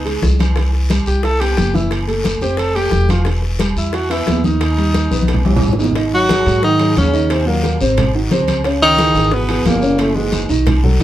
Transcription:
Already playing: upright bass C#2, tenor saxophone D#4
0.05 grand piano G#3 G#4, high conga, high timbale
0.22 upright bass C2, high bongo, low bongo, high conga, short guiro
0.39 grand piano E3 E4, high bongo, high conga, high timbale, short guiro
0.56 grand piano E3 E4, high bongo, high conga, high timbale, long guiro
0.73 high bongo, high conga
0.90 grand piano G3 G4, high bongo, high conga, high timbale, short guiro
1.06 upright bass C2, tenor saxophone G4, high bongo, high conga, short guiro
1.23 grand piano E4 E5, tenor saxophone A4, high bongo, high conga, high timbale, long guiro
1.41 grand piano B3 B4, tenor saxophone G4, high conga, high timbale
1.57 upright bass F#1, high bongo, low bongo, high conga, high timbale, short guiro
1.74 grand piano E3 E4, tenor saxophone E4, high bongo, high conga, short guiro
1.91 high bongo, high conga, high timbale, long guiro
2.08 grand piano A3 A4, high bongo, high conga, high timbale
2.24 high bongo, high conga, high timbale, short guiro
2.41 upright bass F1, grand piano C4 C5, tenor saxophone G4, high bongo, high conga, short guiro
2.57 tenor saxophone A4, high bongo, high conga, high timbale, long guiro
2.76 grand piano A3 A4, tenor saxophone G4, high conga, high timbale
2.91 upright bass E1, high bongo, low bongo, high conga, short guiro
3.09 grand piano E3 E4, tenor saxophone F4, high bongo, high conga, high timbale, short guiro
3.25 grand piano E3 E4, high bongo, high conga, high timbale, long guiro
3.42 high bongo, high conga
3.59 grand piano G3 G4, high bongo, high conga, high timbale, short guiro
3.76 upright bass E2, tenor saxophone E4, high bongo, high conga, short guiro
3.93 grand piano E4 E5, tenor saxophone F#4, high bongo, high conga, high timbale, long guiro
4.10 grand piano B3 B4, tenor saxophone E4, high conga, high timbale
4.27 upright bass D#2, high bongo, low bongo, high conga, high timbale, low timbale, short guiro
4.44 grand piano D#3 D#4, tenor saxophone D#4, high bongo, high conga, short guiro
4.61 high bongo, high conga, high timbale, long guiro
4.78 grand piano G3 G4, high bongo, high conga, high timbale
4.94 high bongo, high conga, high timbale, short guiro
5.11 upright bass B1, grand piano B3 B4, high bongo, high conga, short guiro
5.23 high conga
5.28 high bongo, high timbale, long guiro
5.34 low conga
5.45 grand piano G3 G4, high conga, high timbale
5.51 low bongo
5.56 low conga, high timbale
5.62 upright bass G#1, short guiro
5.68 low conga
5.73 low bongo
5.78 grand piano D#3 D#4, low timbale, short guiro
5.84 low bongo
5.91 low conga
5.95 grand piano D#3 D#4 D#5, high bongo, high conga, high timbale, long guiro
6.14 trombone F#3, tenor saxophone F#4, high conga
6.29 grand piano F#3 F#4 G#4, high bongo, high conga, high timbale, short guiro
6.46 upright bass G#2, grand piano F#3 F#4 G#4, high bongo, high timbale, short guiro
6.63 trombone D#3, tenor saxophone D#4, high bongo, high conga, long guiro
6.79 grand piano F#3 F#4 G#4, high conga, high timbale
6.96 upright bass D#2, trombone C#3, tenor saxophone C#4, high bongo, low bongo, high conga, high timbale, short guiro
7.13 grand piano D#3 D#4 D#5, high bongo, high conga, short guiro
7.30 trombone C3, tenor saxophone C4, high bongo, high conga, high timbale, long guiro
7.47 trombone A#2, grand piano F#3 F#4 A#4, tenor saxophone A#3, high conga
7.64 high bongo, high conga, high timbale, short guiro
7.80 upright bass G#1, grand piano C3 C4 C5, high bongo, high conga, short guiro
7.97 high bongo, high conga, low conga, high timbale, long guiro
8.15 grand piano D#3 D#4 F#4, high bongo, high conga
8.31 upright bass C#2, grand piano C3 C4 C5, high bongo, low bongo, high conga, high timbale, short guiro
8.48 high bongo, high conga, high timbale, short guiro
8.64 grand piano C#3 C#4 C#5, high bongo, high timbale, long guiro
8.82 trombone D#3, tenor saxophone D#4, high conga
8.98 grand piano E3 E4 G#4, high bongo, high conga, high timbale, short guiro
9.14 upright bass G#1, grand piano E3 E4 G#4, high timbale, short guiro
9.31 trombone B2, tenor saxophone B3, high bongo, high conga, long guiro
9.48 grand piano E3 E4 G#4, high bongo, high conga, high timbale
9.64 upright bass F#1, trombone A#2, tenor saxophone A#3, high bongo, low bongo, high conga, high timbale, low timbale, short guiro
9.82 grand piano C#3 C#4 C#5, high bongo, high conga, short guiro
9.98 trombone A2, tenor saxophone A3, high bongo, high conga, high timbale, long guiro
10.15 trombone G#2, grand piano E3 E4 F#4, tenor saxophone G#3, high conga
10.32 high bongo, high conga, high timbale, short guiro
10.49 upright bass B1, grand piano D#3 D#4 D#5, high bongo, high conga, short guiro
10.66 high bongo, high conga, low conga, high timbale, long guiro
10.83 grand piano F#3 F#4 A4, high bongo, high conga, low conga
11.00 upright bass E2, high bongo, low bongo, high conga, high timbale, short guiro

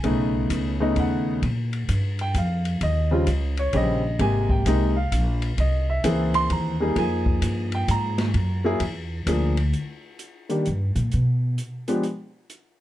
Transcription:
Already playing: grand piano G#5
0.04 upright bass B1, grand piano C#3 A3 B3 D#4, kick, ride
0.50 upright bass C#2, kick, hi-hat pedal, ride
0.80 grand piano C#3 A3 B3 D#4 D#5
0.96 upright bass D#2, grand piano F#5, kick, ride
1.42 upright bass A#2, kick, ride
1.73 ride
1.88 upright bass G2, kick, hi-hat pedal, ride
2.19 grand piano G5, ride
2.34 upright bass F2, grand piano F5, kick, hi-hat pedal, ride
2.65 ride
2.81 upright bass D#2, grand piano D#5, kick, ride
3.11 grand piano C#3 G3 C4 F4
3.27 upright bass C#2, kick, hi-hat pedal, ride
3.57 grand piano C#5, ride
3.73 upright bass A#1, grand piano C#3 G3 C4 G4 D#5, kick, ride
4.19 upright bass G#1, grand piano C3 G#3 A#3 G4 G#5, kick, ride
4.50 grand piano G5, kick
4.65 upright bass C2, grand piano C3 G#3 A#3 D#4, kick, hi-hat pedal, ride
4.96 grand piano F5
5.12 upright bass A#1, kick, hi-hat pedal, ride
5.42 ride
5.58 upright bass C2, grand piano D#5, kick, ride
5.90 grand piano E5
6.04 upright bass C#2, grand piano E3 A#3 C4 G#4, kick, hi-hat pedal, ride
6.34 grand piano C6, ride
6.50 upright bass D#2, grand piano A#5, kick, ride
6.80 grand piano G3 A#3 D#4 G#4
6.96 upright bass F2, grand piano F3 A#3 D#4 G#4 G#5, kick, ride
7.26 kick
7.42 upright bass G2, kick, hi-hat pedal, ride
7.72 grand piano G5, ride
7.88 upright bass G#2, grand piano A#5, kick, hi-hat pedal, ride
8.18 snare, ride
8.34 upright bass F#2, kick, ride
8.64 grand piano F#3 A#3 E4 G#4
8.80 upright bass E2, kick, ride
9.26 upright bass D2, grand piano F3 A#3 D4 G#4, kick, hi-hat pedal, ride
9.57 ride
9.73 closed hi-hat
10.19 closed hi-hat
10.49 grand piano D#3 G3 A#3 D4 G4, closed hi-hat
10.65 upright bass G2, closed hi-hat
10.96 upright bass A#2, closed hi-hat
11.11 upright bass B2, closed hi-hat
11.58 closed hi-hat
11.88 grand piano F3 G#3 B3 D4 G4, closed hi-hat
12.03 closed hi-hat
12.50 closed hi-hat

